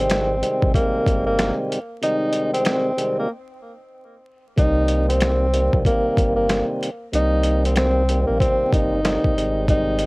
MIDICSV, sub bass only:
0, 0, Header, 1, 2, 480
1, 0, Start_track
1, 0, Key_signature, -3, "minor"
1, 0, Tempo, 638298
1, 1521, Time_signature, 4, 2, 24, 8
1, 7566, End_track
2, 0, Start_track
2, 0, Title_t, "Sub bass"
2, 0, Program_c, 0, 38
2, 0, Note_on_c, 0, 32, 90
2, 320, Note_off_c, 0, 32, 0
2, 471, Note_on_c, 0, 32, 88
2, 548, Note_off_c, 0, 32, 0
2, 712, Note_on_c, 0, 31, 49
2, 748, Note_off_c, 0, 31, 0
2, 801, Note_on_c, 0, 31, 97
2, 1138, Note_off_c, 0, 31, 0
2, 3442, Note_on_c, 0, 36, 107
2, 4281, Note_off_c, 0, 36, 0
2, 4311, Note_on_c, 0, 34, 94
2, 4388, Note_off_c, 0, 34, 0
2, 4552, Note_on_c, 0, 31, 48
2, 4588, Note_off_c, 0, 31, 0
2, 4642, Note_on_c, 0, 31, 88
2, 4978, Note_off_c, 0, 31, 0
2, 5362, Note_on_c, 0, 36, 112
2, 6201, Note_off_c, 0, 36, 0
2, 6233, Note_on_c, 0, 34, 87
2, 6310, Note_off_c, 0, 34, 0
2, 6473, Note_on_c, 0, 31, 46
2, 6508, Note_off_c, 0, 31, 0
2, 6562, Note_on_c, 0, 31, 91
2, 6898, Note_off_c, 0, 31, 0
2, 7042, Note_on_c, 0, 32, 94
2, 7566, Note_off_c, 0, 32, 0
2, 7566, End_track
0, 0, End_of_file